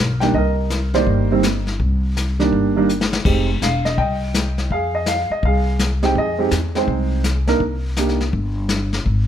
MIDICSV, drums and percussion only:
0, 0, Header, 1, 2, 480
1, 0, Start_track
1, 0, Key_signature, -3, "minor"
1, 0, Tempo, 362976
1, 465, Time_signature, 4, 2, 24, 8
1, 12263, End_track
2, 0, Start_track
2, 0, Title_t, "Drums"
2, 280, Note_on_c, 9, 38, 36
2, 412, Note_off_c, 9, 38, 0
2, 449, Note_on_c, 9, 36, 30
2, 451, Note_on_c, 9, 25, 41
2, 581, Note_off_c, 9, 36, 0
2, 929, Note_on_c, 9, 44, 45
2, 930, Note_on_c, 9, 38, 54
2, 1061, Note_off_c, 9, 44, 0
2, 1062, Note_off_c, 9, 38, 0
2, 1239, Note_on_c, 9, 38, 32
2, 1372, Note_off_c, 9, 38, 0
2, 1411, Note_on_c, 9, 36, 29
2, 1416, Note_off_c, 9, 25, 0
2, 1416, Note_on_c, 9, 25, 40
2, 1543, Note_off_c, 9, 36, 0
2, 1891, Note_on_c, 9, 44, 53
2, 1892, Note_on_c, 9, 38, 55
2, 2023, Note_off_c, 9, 44, 0
2, 2024, Note_off_c, 9, 38, 0
2, 2205, Note_on_c, 9, 38, 33
2, 2338, Note_off_c, 9, 38, 0
2, 2376, Note_on_c, 9, 36, 32
2, 2380, Note_off_c, 9, 25, 0
2, 2380, Note_on_c, 9, 25, 46
2, 2508, Note_off_c, 9, 36, 0
2, 2866, Note_on_c, 9, 44, 51
2, 2868, Note_on_c, 9, 38, 51
2, 2999, Note_off_c, 9, 44, 0
2, 3000, Note_off_c, 9, 38, 0
2, 3170, Note_on_c, 9, 38, 35
2, 3302, Note_off_c, 9, 38, 0
2, 3339, Note_on_c, 9, 36, 28
2, 3345, Note_off_c, 9, 25, 0
2, 3345, Note_on_c, 9, 25, 39
2, 3471, Note_off_c, 9, 36, 0
2, 3826, Note_on_c, 9, 44, 45
2, 3958, Note_off_c, 9, 44, 0
2, 3981, Note_on_c, 9, 38, 57
2, 4113, Note_off_c, 9, 38, 0
2, 4137, Note_on_c, 9, 38, 71
2, 4270, Note_off_c, 9, 38, 0
2, 4300, Note_off_c, 9, 25, 0
2, 4300, Note_on_c, 9, 25, 35
2, 4300, Note_on_c, 9, 36, 59
2, 4300, Note_on_c, 9, 49, 62
2, 4432, Note_off_c, 9, 36, 0
2, 4432, Note_off_c, 9, 49, 0
2, 4787, Note_on_c, 9, 44, 44
2, 4788, Note_on_c, 9, 38, 47
2, 4919, Note_off_c, 9, 44, 0
2, 4920, Note_off_c, 9, 38, 0
2, 5094, Note_on_c, 9, 38, 33
2, 5227, Note_off_c, 9, 38, 0
2, 5264, Note_on_c, 9, 36, 33
2, 5266, Note_off_c, 9, 25, 0
2, 5266, Note_on_c, 9, 25, 46
2, 5396, Note_off_c, 9, 36, 0
2, 5744, Note_on_c, 9, 44, 51
2, 5746, Note_on_c, 9, 38, 55
2, 5877, Note_off_c, 9, 44, 0
2, 5878, Note_off_c, 9, 38, 0
2, 6056, Note_on_c, 9, 38, 34
2, 6188, Note_off_c, 9, 38, 0
2, 6223, Note_off_c, 9, 25, 0
2, 6223, Note_on_c, 9, 25, 47
2, 6223, Note_on_c, 9, 36, 31
2, 6355, Note_off_c, 9, 36, 0
2, 6694, Note_on_c, 9, 44, 48
2, 6695, Note_on_c, 9, 38, 52
2, 6826, Note_off_c, 9, 44, 0
2, 6827, Note_off_c, 9, 38, 0
2, 7181, Note_off_c, 9, 25, 0
2, 7181, Note_on_c, 9, 25, 50
2, 7181, Note_on_c, 9, 36, 32
2, 7313, Note_off_c, 9, 36, 0
2, 7661, Note_on_c, 9, 44, 49
2, 7662, Note_on_c, 9, 38, 54
2, 7793, Note_off_c, 9, 44, 0
2, 7794, Note_off_c, 9, 38, 0
2, 7970, Note_on_c, 9, 38, 38
2, 8102, Note_off_c, 9, 38, 0
2, 8138, Note_on_c, 9, 36, 28
2, 8142, Note_off_c, 9, 25, 0
2, 8142, Note_on_c, 9, 25, 41
2, 8270, Note_off_c, 9, 36, 0
2, 8611, Note_on_c, 9, 44, 42
2, 8612, Note_on_c, 9, 38, 56
2, 8743, Note_off_c, 9, 44, 0
2, 8744, Note_off_c, 9, 38, 0
2, 8928, Note_on_c, 9, 38, 33
2, 9061, Note_off_c, 9, 38, 0
2, 9093, Note_off_c, 9, 25, 0
2, 9093, Note_on_c, 9, 25, 39
2, 9095, Note_on_c, 9, 36, 29
2, 9227, Note_off_c, 9, 36, 0
2, 9575, Note_on_c, 9, 44, 51
2, 9576, Note_on_c, 9, 38, 55
2, 9707, Note_off_c, 9, 44, 0
2, 9708, Note_off_c, 9, 38, 0
2, 9884, Note_on_c, 9, 38, 34
2, 10016, Note_off_c, 9, 38, 0
2, 10054, Note_on_c, 9, 36, 32
2, 10057, Note_off_c, 9, 25, 0
2, 10057, Note_on_c, 9, 25, 46
2, 10187, Note_off_c, 9, 36, 0
2, 10534, Note_on_c, 9, 44, 58
2, 10535, Note_on_c, 9, 38, 54
2, 10666, Note_off_c, 9, 44, 0
2, 10667, Note_off_c, 9, 38, 0
2, 10695, Note_on_c, 9, 38, 26
2, 10828, Note_off_c, 9, 38, 0
2, 10850, Note_on_c, 9, 38, 40
2, 10983, Note_off_c, 9, 38, 0
2, 11013, Note_off_c, 9, 25, 0
2, 11013, Note_on_c, 9, 25, 45
2, 11017, Note_on_c, 9, 36, 30
2, 11149, Note_off_c, 9, 36, 0
2, 11489, Note_on_c, 9, 44, 52
2, 11490, Note_on_c, 9, 38, 56
2, 11621, Note_off_c, 9, 44, 0
2, 11622, Note_off_c, 9, 38, 0
2, 11806, Note_on_c, 9, 38, 37
2, 11938, Note_off_c, 9, 38, 0
2, 11974, Note_off_c, 9, 25, 0
2, 11974, Note_on_c, 9, 25, 40
2, 11978, Note_on_c, 9, 36, 30
2, 12111, Note_off_c, 9, 36, 0
2, 12263, Note_off_c, 9, 25, 0
2, 12263, End_track
0, 0, End_of_file